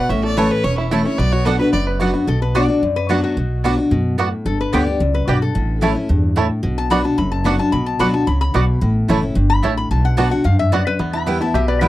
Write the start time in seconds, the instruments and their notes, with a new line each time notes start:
Already playing: fiddle F#5
0.09 upright bass A1, steel-string acoustic guitar A2, five-string banjo C#4, fiddle E5
0.23 five-string banjo A4, fiddle D5
0.37 steel-string acoustic guitar E3 A3 C#4 E4, mandolin A3 E4 C#5 A5, five-string banjo B4, fiddle C#5
0.51 five-string banjo A4, fiddle B4
0.64 upright bass E1, steel-string acoustic guitar E2, five-string banjo C#4, fiddle C#5
0.78 fiddle E4, five-string banjo E4
0.91 steel-string acoustic guitar E3 A3 C#4 E4, mandolin A3 E4 C#5 A5, five-string banjo A4, fiddle A4
1.05 five-string banjo C#4, steel-string acoustic guitar C#4 E4, fiddle C#5
1.18 upright bass B1, steel-string acoustic guitar B2, five-string banjo B3, fiddle D5
1.32 five-string banjo F#4, fiddle C#5
1.45 steel-string acoustic guitar F#3 B3 D4 F#4, mandolin B3 F#4 D5 F#5, five-string banjo B3, fiddle A4
1.59 steel-string acoustic guitar D4 F#4, fiddle B4, five-string banjo B4
1.73 upright bass F#1, steel-string acoustic guitar F#2, five-string banjo B3, fiddle D5
1.87 five-string banjo B4
2.00 steel-string acoustic guitar F#3 B3 D4 F#4, mandolin B3 F#4 D5 F#5, five-string banjo F#4
2.14 five-string banjo B3, steel-string acoustic guitar D4 F#4
2.27 upright bass B1, steel-string acoustic guitar B2, resonator guitar played with a steel bar A4
2.42 resonator guitar played with a steel bar B4
2.55 steel-string acoustic guitar F#3 B3 D4 F#4, mandolin B3 F#4 D5 F#5, five-string banjo B3 F#4, resonator guitar played with a steel bar D5
2.68 steel-string acoustic guitar D4 F#4
2.82 upright bass F#2, steel-string acoustic guitar F#2
2.96 resonator guitar played with a steel bar B4
3.09 steel-string acoustic guitar F#3 B3 D4 F#4, mandolin B3 F#4 D5 F#5, five-string banjo B3 F#4, resonator guitar played with a steel bar F#4
3.24 resonator guitar played with a steel bar F#4
3.37 upright bass B1, steel-string acoustic guitar B2
3.64 steel-string acoustic guitar F#3 B3 D4 F#4, mandolin B3 F#4 D5 F#5, five-string banjo B3 F#4
3.78 steel-string acoustic guitar D4 F#4
3.91 upright bass F#2, steel-string acoustic guitar B2
4.18 steel-string acoustic guitar A2, mandolin B3 F#4 D5 F#5, five-string banjo B3 F#4
4.45 upright bass G1, steel-string acoustic guitar G2, resonator guitar played with a steel bar A4
4.61 resonator guitar played with a steel bar B4
4.73 upright bass D2, steel-string acoustic guitar D3 G3 B3 G4, mandolin B3 G4 D5 G5, five-string banjo B3 G4, resonator guitar played with a steel bar D5
4.87 steel-string acoustic guitar B3 G4
5.00 upright bass C#2, steel-string acoustic guitar F#2
5.14 resonator guitar played with a steel bar B4
5.27 upright bass B1, steel-string acoustic guitar G2, mandolin B3 G4 D5 G5, five-string banjo B3 G4, resonator guitar played with a steel bar F#4
5.42 resonator guitar played with a steel bar A4
5.55 upright bass A1, steel-string acoustic guitar A2
5.81 steel-string acoustic guitar E3 A3 C#4 E4, mandolin A3 E4 C#5 A5, five-string banjo C#4 E4 A4
5.95 steel-string acoustic guitar C#4 E4
6.09 upright bass E2, steel-string acoustic guitar G2
6.36 steel-string acoustic guitar A2, mandolin A3 E4 C#5 A5, five-string banjo C#4 E4 A4
6.63 upright bass B1, steel-string acoustic guitar B2
6.78 resonator guitar played with a steel bar A5
6.90 steel-string acoustic guitar F#3 B3 D4 F#4, mandolin B3 F#4 D5 F#5, five-string banjo B3 F#4, resonator guitar played with a steel bar B5
7.04 steel-string acoustic guitar D4 F#4, resonator guitar played with a steel bar A5
7.18 upright bass F#1, steel-string acoustic guitar F#2, resonator guitar played with a steel bar B5
7.32 resonator guitar played with a steel bar A5
7.44 steel-string acoustic guitar F#3 B3 D4 F#4, mandolin B3 F#4 D5 F#5, five-string banjo B3 F#4, resonator guitar played with a steel bar B5
7.58 steel-string acoustic guitar D4 F#4, resonator guitar played with a steel bar A5
7.72 upright bass B1, steel-string acoustic guitar B2, resonator guitar played with a steel bar B5
7.86 resonator guitar played with a steel bar A5
7.99 upright bass D2, steel-string acoustic guitar F#3 B3 D4 F#4, mandolin B3 F#4 D5 F#5, five-string banjo B3 F#4, resonator guitar played with a steel bar B5
8.13 steel-string acoustic guitar D4 F#4, resonator guitar played with a steel bar A5
8.27 upright bass C#2, steel-string acoustic guitar C#3, resonator guitar played with a steel bar B5
8.41 resonator guitar played with a steel bar B5
8.54 upright bass B1, steel-string acoustic guitar B2, mandolin B3 F#4 D5 F#5, five-string banjo B3 F#4
8.81 upright bass A1, steel-string acoustic guitar A2
9.08 upright bass F#1, steel-string acoustic guitar E3 A3 C#4 E4, mandolin A3 E4 C#5 A5, five-string banjo C#4 E4 A4
9.22 steel-string acoustic guitar C#4 E4
9.35 upright bass G1, steel-string acoustic guitar G2
9.50 resonator guitar played with a steel bar B5
9.63 upright bass A1, steel-string acoustic guitar A2, mandolin A3 E4 C#5 A5, five-string banjo C#4 E4 A4
9.77 resonator guitar played with a steel bar B5
9.91 upright bass B1, steel-string acoustic guitar B2, resonator guitar played with a steel bar A5
10.05 resonator guitar played with a steel bar F#5
10.17 steel-string acoustic guitar F#3 B3 D4 F#4, mandolin B3 F#4 D5 F#5, five-string banjo B3 F#4, resonator guitar played with a steel bar A5
10.31 steel-string acoustic guitar D4 F#4, resonator guitar played with a steel bar F#5
10.44 upright bass F#2, steel-string acoustic guitar G2, resonator guitar played with a steel bar F5
10.59 resonator guitar played with a steel bar E5
10.72 steel-string acoustic guitar F#2, mandolin B3 F#4 D5 F#5, five-string banjo B3 F#4, resonator guitar played with a steel bar D5
10.87 resonator guitar played with a steel bar B4
10.99 steel-string acoustic guitar E2, upright bass E2, five-string banjo B3
11.13 five-string banjo E4, resonator guitar played with a steel bar B5
11.26 steel-string acoustic guitar E3 G3 B3 E4, mandolin B3 E4 B4 G5, five-string banjo B3
11.41 steel-string acoustic guitar B3 E4, five-string banjo E4, resonator guitar played with a steel bar A5
11.54 upright bass B1, steel-string acoustic guitar B2, five-string banjo G4, resonator guitar played with a steel bar E5
11.68 five-string banjo B4, resonator guitar played with a steel bar D5
11.81 steel-string acoustic guitar E3 G3 B3 E4, mandolin B3 E4 B4 G5, five-string banjo G4, resonator guitar played with a steel bar B4